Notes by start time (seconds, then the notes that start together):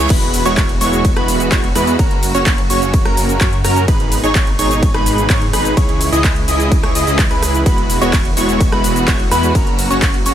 Already playing: G#3, reverse cymbal
0.10 E1 E3 G#3 B3 E4 F#4 B4 B5, kick, closed hi-hat, crash, ride, shaker
0.22 closed hi-hat
0.34 open hi-hat, shaker
0.45 E1 G#3 B3 E4 F#4 C#5 C#6, closed hi-hat, shaker
0.57 kick, clap, closed hi-hat, ride, shaker
0.69 closed hi-hat
0.81 E1 G#3 B3 E4 F#4 C#5 C#6, open hi-hat, shaker
0.93 closed hi-hat, shaker
1.05 kick, closed hi-hat, ride, shaker
1.16 E1 G#3 B3 E4 F#4 B4 B5, cross-stick, closed hi-hat
1.28 open hi-hat, shaker
1.40 closed hi-hat, shaker
1.52 E1 G#3 E4 F#4 C#5 C#6, kick, clap, closed hi-hat, ride, shaker
1.64 closed hi-hat
1.75 E2 G#3 B3 E4 F#4 B4 B5, cross-stick, open hi-hat, shaker
1.87 closed hi-hat, shaker
1.99 F#1 C#3 F#3 A#3 C#4 F#4 A#4 A#5, kick, closed hi-hat, ride, shaker
2.11 closed hi-hat
2.23 open hi-hat, shaker
2.35 F#1 C#4 F#4 C#5 C#6, closed hi-hat, shaker
2.46 kick, clap, closed hi-hat, ride, shaker
2.58 closed hi-hat
2.70 F#1 C#4 F#4 C#5 C#6, open hi-hat, shaker
2.82 closed hi-hat, shaker
2.94 kick, closed hi-hat, ride, shaker
3.05 F#1 C#4 F#4 A#4 A#5, cross-stick, closed hi-hat
3.17 open hi-hat, shaker
3.29 closed hi-hat, shaker
3.41 F#2 C#4 F#4 C#5 C#6, kick, clap, closed hi-hat, ride, shaker
3.53 closed hi-hat
3.64 F#2 C#4 F#4 A#4 A#5, cross-stick, open hi-hat, shaker
3.76 closed hi-hat, shaker
3.88 G#1 B2 D#3 G#3 D#4 G#4 B4 B5, kick, closed hi-hat, ride, shaker
4.00 closed hi-hat
4.12 open hi-hat, shaker
4.24 G#1 D#4 G#4 C#5 C#6, closed hi-hat, shaker
4.35 kick, clap, closed hi-hat, ride, shaker
4.47 closed hi-hat
4.59 G#1 D#4 G#4 C#5 C#6, open hi-hat, shaker
4.71 closed hi-hat, shaker
4.83 kick, closed hi-hat, ride, shaker
4.94 G#1 D#4 G#4 B4 B5, cross-stick, closed hi-hat
5.06 open hi-hat, shaker
5.18 closed hi-hat, shaker
5.30 G#2 D#4 G#4 C#5 C#6, kick, clap, closed hi-hat, ride, shaker
5.42 closed hi-hat
5.53 G#1 D#4 G#4 B4 B5, cross-stick, open hi-hat, shaker
5.65 closed hi-hat, shaker
5.77 C#2 C#3 E3 G#3 E4 G#4 C#5 C#6, kick, closed hi-hat, ride, shaker
5.89 closed hi-hat
6.01 open hi-hat, shaker
6.12 C#2 E4 G#4 D#5 D#6, closed hi-hat, shaker
6.24 kick, clap, closed hi-hat, ride, shaker
6.36 closed hi-hat
6.48 C#2 E4 G#4 D#5 D#6, open hi-hat, shaker
6.60 closed hi-hat, shaker
6.72 kick, closed hi-hat, ride, shaker
6.83 C#2 E4 G#4 C#5 C#6, cross-stick, closed hi-hat
6.95 C#2 E4 G#4 D#5 D#6, open hi-hat, shaker
7.07 C#2 E4 G#4 D#5 D#6, closed hi-hat, shaker
7.19 kick, clap, closed hi-hat, ride, shaker
7.31 C#2 E4 G#4 B4 B5, closed hi-hat
7.43 cross-stick, open hi-hat, shaker
7.54 closed hi-hat, shaker
7.66 E1 E3 G#3 B3 E4 F#4 B4 B5, kick, closed hi-hat, ride, shaker
7.78 closed hi-hat
7.90 open hi-hat, shaker
8.01 E1 G#3 B3 E4 F#4 C#5 C#6, closed hi-hat, shaker
8.13 kick, clap, closed hi-hat, ride, shaker
8.25 closed hi-hat
8.37 E1 G#3 B3 E4 F#4 C#5 C#6, open hi-hat, shaker
8.49 closed hi-hat, shaker
8.61 kick, closed hi-hat, ride, shaker
8.72 E1 G#3 B3 E4 F#4 B4 B5, cross-stick, closed hi-hat
8.84 open hi-hat, shaker
8.96 closed hi-hat, shaker
9.08 E1 G#3 B3 E4 F#4 C#5 C#6, kick, clap, closed hi-hat, ride, shaker
9.20 closed hi-hat
9.31 E2 G#3 B3 E4 F#4 B4 B5, cross-stick, open hi-hat, shaker
9.43 closed hi-hat, shaker
9.55 F#1 C#3 F#3 A#3 C#4 F#4 A#4 A#5, kick, closed hi-hat, ride, shaker
9.67 closed hi-hat
9.79 open hi-hat, shaker
9.90 F#1 C#4 F#4 C#5 C#6, closed hi-hat, shaker
10.02 kick, clap, closed hi-hat, ride, shaker
10.14 closed hi-hat
10.26 F#1 C#4 F#4 C#5 C#6, open hi-hat, shaker